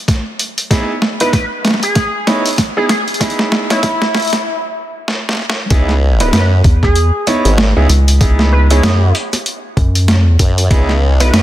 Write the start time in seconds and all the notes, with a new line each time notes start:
0.08 kick, snare, closed hi-hat
0.39 closed hi-hat
0.58 closed hi-hat
0.71 B3 D#4 E4 G#4, kick, snare, closed hi-hat
1.02 snare
1.20 B3 D#4 E4 B4, closed hi-hat
1.33 B4, kick, snare, closed hi-hat
1.65 snare, closed hi-hat
1.68 snare
1.71 snare
1.74 snare
1.80 G#4, snare, closed hi-hat
1.95 kick, snare, closed hi-hat
2.27 B3 D#4 E4 C#5, snare, closed hi-hat
2.46 closed hi-hat
2.47 closed hi-hat
2.49 closed hi-hat
2.51 closed hi-hat
2.53 closed hi-hat
2.54 closed hi-hat
2.56 kick, snare, closed hi-hat
2.58 closed hi-hat
2.77 B3 D#4 E4 G#4
2.89 G#4, snare, closed hi-hat
3.08 closed hi-hat
3.14 closed hi-hat
3.20 B3 D#4 E4 G#4, kick, snare, closed hi-hat
3.30 closed hi-hat
3.39 snare
3.52 snare
3.70 B3 D#4 E4 C#5, snare, closed hi-hat
3.83 kick, snare, closed hi-hat
4.02 snare
4.15 snare, closed hi-hat
4.17 closed hi-hat
4.20 closed hi-hat
4.22 closed hi-hat
4.25 closed hi-hat
4.27 closed hi-hat
4.30 snare, closed hi-hat
4.33 closed hi-hat
5.08 snare
5.29 snare
5.33 snare
5.35 snare
5.37 snare
5.39 snare
5.42 snare
5.50 snare
5.70 C#2 B3 D#4 E4 G#4, kick, closed hi-hat
5.89 snare
6.20 B3 D#4 E4 B4, closed hi-hat
6.33 F#2 B4, snare, closed hi-hat
6.64 E2, kick, closed hi-hat
6.83 G#4, kick, snare
6.96 closed hi-hat
7.27 B3 D#4 E4 C#5, closed hi-hat
7.45 G#1, closed hi-hat
7.58 snare
7.77 C#2 B3 D#4 E4 G#4
7.89 C#2, closed hi-hat
8.08 closed hi-hat
8.21 B3 D#4 E4 G#4, kick, closed hi-hat
8.39 snare
8.52 B4
8.70 B3 D#4 E4 G#4 C#5, closed hi-hat
8.83 F#2, snare, closed hi-hat
9.15 closed hi-hat
9.33 snare, closed hi-hat
9.46 closed hi-hat
9.77 F#2, kick, closed hi-hat
9.95 closed hi-hat
10.08 snare, closed hi-hat
10.20 F2
10.39 F#2, kick, closed hi-hat
10.58 closed hi-hat
10.71 C#2 B3 D#4 E4 G#4, kick, closed hi-hat
10.89 snare
11.14 C2
11.20 B3 D#4 E4 B4, closed hi-hat
11.33 F#2 B4, snare, closed hi-hat